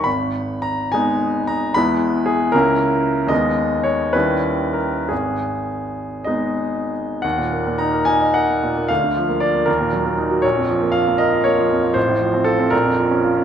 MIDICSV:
0, 0, Header, 1, 2, 480
1, 0, Start_track
1, 0, Key_signature, 5, "minor"
1, 0, Tempo, 584226
1, 47, Time_signature, 6, 3, 24, 8
1, 1006, Tempo, 519481
1, 2926, Tempo, 569801
1, 3886, Tempo, 662252
1, 4366, Tempo, 748130
1, 5326, Tempo, 636943
1, 5806, Key_signature, -6, "minor"
1, 5806, Tempo, 545951
1, 7726, Tempo, 507614
1, 11529, End_track
2, 0, Start_track
2, 0, Title_t, "Grand piano"
2, 0, Program_c, 0, 0
2, 0, Control_c, 0, 64, 127
2, 31, Note_on_c, 0, 83, 57
2, 47, Note_on_c, 0, 32, 35
2, 63, Control_c, 0, 64, 0
2, 235, Control_c, 0, 64, 127
2, 509, Note_on_c, 0, 82, 57
2, 525, Note_off_c, 0, 83, 0
2, 752, Note_off_c, 0, 32, 0
2, 753, Note_on_c, 0, 80, 59
2, 761, Note_off_c, 0, 82, 0
2, 769, Note_on_c, 0, 56, 32
2, 774, Note_on_c, 0, 59, 31
2, 775, Note_on_c, 0, 63, 37
2, 1237, Note_on_c, 0, 82, 60
2, 1246, Note_off_c, 0, 80, 0
2, 1463, Note_off_c, 0, 56, 0
2, 1466, Note_off_c, 0, 59, 0
2, 1467, Note_off_c, 0, 63, 0
2, 1486, Note_on_c, 0, 83, 75
2, 1493, Note_off_c, 0, 82, 0
2, 1502, Note_on_c, 0, 40, 47
2, 1502, Note_on_c, 0, 56, 31
2, 1506, Note_on_c, 0, 59, 34
2, 1515, Note_on_c, 0, 64, 34
2, 1518, Control_c, 0, 64, 0
2, 1653, Control_c, 0, 64, 127
2, 1960, Note_on_c, 0, 68, 63
2, 1973, Note_off_c, 0, 83, 0
2, 2181, Note_off_c, 0, 56, 0
2, 2183, Note_off_c, 0, 59, 0
2, 2188, Note_off_c, 0, 64, 0
2, 2197, Note_off_c, 0, 40, 0
2, 2202, Note_on_c, 0, 70, 76
2, 2208, Note_off_c, 0, 68, 0
2, 2223, Note_on_c, 0, 58, 36
2, 2224, Note_on_c, 0, 37, 53
2, 2229, Note_on_c, 0, 61, 35
2, 2233, Control_c, 0, 64, 0
2, 2234, Note_on_c, 0, 64, 40
2, 2396, Control_c, 0, 64, 127
2, 2890, Note_off_c, 0, 58, 0
2, 2894, Note_off_c, 0, 61, 0
2, 2896, Note_off_c, 0, 64, 0
2, 2896, Note_on_c, 0, 39, 44
2, 2907, Note_off_c, 0, 37, 0
2, 2909, Note_on_c, 0, 75, 63
2, 2917, Note_off_c, 0, 70, 0
2, 2926, Note_on_c, 0, 56, 35
2, 2932, Note_on_c, 0, 59, 34
2, 2936, Note_on_c, 0, 63, 32
2, 2942, Control_c, 0, 64, 0
2, 3073, Control_c, 0, 64, 127
2, 3375, Note_on_c, 0, 73, 56
2, 3381, Note_off_c, 0, 75, 0
2, 3598, Note_off_c, 0, 39, 0
2, 3599, Note_off_c, 0, 56, 0
2, 3602, Note_off_c, 0, 59, 0
2, 3604, Note_off_c, 0, 63, 0
2, 3622, Note_on_c, 0, 71, 62
2, 3626, Note_off_c, 0, 73, 0
2, 3634, Note_on_c, 0, 39, 42
2, 3636, Note_on_c, 0, 55, 33
2, 3640, Note_on_c, 0, 61, 31
2, 3646, Note_on_c, 0, 64, 30
2, 3647, Control_c, 0, 64, 0
2, 3805, Control_c, 0, 64, 127
2, 4098, Note_on_c, 0, 70, 43
2, 4110, Note_off_c, 0, 71, 0
2, 4338, Note_off_c, 0, 55, 0
2, 4340, Note_off_c, 0, 61, 0
2, 4342, Note_off_c, 0, 64, 0
2, 4345, Note_off_c, 0, 39, 0
2, 4353, Note_on_c, 0, 68, 44
2, 4357, Note_off_c, 0, 70, 0
2, 4368, Note_on_c, 0, 32, 36
2, 4381, Control_c, 0, 64, 0
2, 4520, Control_c, 0, 64, 127
2, 5084, Note_off_c, 0, 32, 0
2, 5098, Note_on_c, 0, 75, 48
2, 5111, Note_on_c, 0, 56, 28
2, 5113, Note_on_c, 0, 59, 26
2, 5115, Note_on_c, 0, 63, 28
2, 5568, Note_off_c, 0, 68, 0
2, 5779, Note_off_c, 0, 56, 0
2, 5780, Note_off_c, 0, 59, 0
2, 5781, Note_off_c, 0, 63, 0
2, 5793, Note_on_c, 0, 78, 61
2, 5801, Note_off_c, 0, 75, 0
2, 5809, Note_on_c, 0, 39, 44
2, 5821, Control_c, 0, 64, 0
2, 5935, Note_on_c, 0, 46, 31
2, 5948, Control_c, 0, 64, 127
2, 6063, Note_on_c, 0, 58, 31
2, 6129, Note_off_c, 0, 46, 0
2, 6185, Note_on_c, 0, 46, 36
2, 6253, Note_off_c, 0, 58, 0
2, 6286, Note_on_c, 0, 82, 61
2, 6289, Note_off_c, 0, 78, 0
2, 6302, Note_on_c, 0, 63, 36
2, 6374, Note_off_c, 0, 46, 0
2, 6422, Note_on_c, 0, 70, 36
2, 6493, Note_off_c, 0, 63, 0
2, 6521, Note_on_c, 0, 80, 67
2, 6534, Note_off_c, 0, 82, 0
2, 6539, Note_on_c, 0, 63, 40
2, 6614, Note_off_c, 0, 70, 0
2, 6662, Note_on_c, 0, 75, 38
2, 6734, Note_off_c, 0, 63, 0
2, 6774, Note_off_c, 0, 80, 0
2, 6774, Note_on_c, 0, 78, 62
2, 6790, Note_on_c, 0, 70, 36
2, 6857, Note_off_c, 0, 75, 0
2, 6912, Note_on_c, 0, 58, 32
2, 6982, Note_off_c, 0, 70, 0
2, 7034, Note_on_c, 0, 46, 34
2, 7102, Note_off_c, 0, 58, 0
2, 7154, Note_on_c, 0, 58, 31
2, 7221, Note_off_c, 0, 46, 0
2, 7231, Note_off_c, 0, 39, 0
2, 7254, Note_on_c, 0, 77, 62
2, 7260, Note_off_c, 0, 78, 0
2, 7269, Note_off_c, 0, 58, 0
2, 7269, Note_on_c, 0, 38, 43
2, 7282, Control_c, 0, 64, 0
2, 7388, Note_on_c, 0, 50, 28
2, 7429, Control_c, 0, 64, 127
2, 7503, Note_on_c, 0, 53, 36
2, 7569, Note_off_c, 0, 50, 0
2, 7611, Note_on_c, 0, 58, 34
2, 7683, Note_off_c, 0, 53, 0
2, 7711, Note_on_c, 0, 74, 60
2, 7720, Note_off_c, 0, 77, 0
2, 7725, Note_on_c, 0, 65, 36
2, 7798, Note_off_c, 0, 58, 0
2, 7841, Note_on_c, 0, 58, 35
2, 7920, Note_off_c, 0, 65, 0
2, 7948, Note_on_c, 0, 70, 65
2, 7949, Note_off_c, 0, 38, 0
2, 7960, Note_off_c, 0, 74, 0
2, 7964, Note_on_c, 0, 39, 48
2, 7965, Note_off_c, 0, 58, 0
2, 7984, Control_c, 0, 64, 0
2, 8092, Note_on_c, 0, 46, 32
2, 8159, Control_c, 0, 64, 127
2, 8206, Note_on_c, 0, 54, 35
2, 8283, Note_off_c, 0, 46, 0
2, 8323, Note_on_c, 0, 58, 36
2, 8399, Note_off_c, 0, 54, 0
2, 8443, Note_on_c, 0, 63, 33
2, 8516, Note_off_c, 0, 58, 0
2, 8563, Note_on_c, 0, 66, 33
2, 8636, Note_off_c, 0, 63, 0
2, 8662, Note_off_c, 0, 39, 0
2, 8670, Note_on_c, 0, 73, 62
2, 8676, Note_off_c, 0, 70, 0
2, 8684, Note_off_c, 0, 66, 0
2, 8689, Note_on_c, 0, 34, 44
2, 8701, Control_c, 0, 64, 0
2, 8808, Note_on_c, 0, 41, 32
2, 8849, Control_c, 0, 64, 127
2, 8924, Note_on_c, 0, 53, 33
2, 9003, Note_off_c, 0, 41, 0
2, 9049, Note_on_c, 0, 58, 35
2, 9121, Note_off_c, 0, 53, 0
2, 9139, Note_on_c, 0, 77, 65
2, 9156, Note_on_c, 0, 65, 40
2, 9163, Note_off_c, 0, 73, 0
2, 9243, Note_off_c, 0, 58, 0
2, 9289, Note_on_c, 0, 58, 36
2, 9355, Note_off_c, 0, 65, 0
2, 9390, Note_on_c, 0, 75, 65
2, 9394, Note_off_c, 0, 77, 0
2, 9408, Note_on_c, 0, 70, 44
2, 9479, Note_off_c, 0, 58, 0
2, 9527, Note_on_c, 0, 65, 38
2, 9598, Note_off_c, 0, 70, 0
2, 9634, Note_on_c, 0, 73, 64
2, 9637, Note_off_c, 0, 75, 0
2, 9650, Note_on_c, 0, 58, 38
2, 9719, Note_off_c, 0, 65, 0
2, 9766, Note_on_c, 0, 53, 35
2, 9841, Note_off_c, 0, 58, 0
2, 9884, Note_on_c, 0, 41, 36
2, 9960, Note_off_c, 0, 53, 0
2, 10008, Note_on_c, 0, 53, 33
2, 10078, Note_off_c, 0, 41, 0
2, 10091, Note_off_c, 0, 34, 0
2, 10106, Note_on_c, 0, 72, 62
2, 10120, Note_off_c, 0, 73, 0
2, 10122, Note_on_c, 0, 33, 45
2, 10126, Note_off_c, 0, 53, 0
2, 10144, Control_c, 0, 64, 0
2, 10245, Note_on_c, 0, 45, 33
2, 10288, Control_c, 0, 64, 127
2, 10359, Note_on_c, 0, 53, 37
2, 10434, Note_off_c, 0, 45, 0
2, 10484, Note_on_c, 0, 60, 38
2, 10552, Note_off_c, 0, 53, 0
2, 10585, Note_on_c, 0, 69, 62
2, 10592, Note_off_c, 0, 72, 0
2, 10601, Note_on_c, 0, 65, 40
2, 10676, Note_off_c, 0, 60, 0
2, 10727, Note_on_c, 0, 60, 42
2, 10796, Note_off_c, 0, 65, 0
2, 10820, Note_off_c, 0, 33, 0
2, 10830, Note_on_c, 0, 70, 66
2, 10836, Note_off_c, 0, 69, 0
2, 10843, Note_on_c, 0, 34, 54
2, 10847, Note_off_c, 0, 60, 0
2, 10863, Control_c, 0, 64, 0
2, 10966, Note_on_c, 0, 41, 36
2, 11003, Control_c, 0, 64, 127
2, 11077, Note_off_c, 0, 70, 0
2, 11091, Note_on_c, 0, 53, 34
2, 11157, Note_off_c, 0, 41, 0
2, 11209, Note_on_c, 0, 61, 40
2, 11279, Note_off_c, 0, 53, 0
2, 11329, Note_on_c, 0, 65, 41
2, 11399, Note_off_c, 0, 61, 0
2, 11454, Note_on_c, 0, 61, 37
2, 11521, Note_off_c, 0, 65, 0
2, 11529, Note_off_c, 0, 34, 0
2, 11529, Note_off_c, 0, 61, 0
2, 11529, End_track
0, 0, End_of_file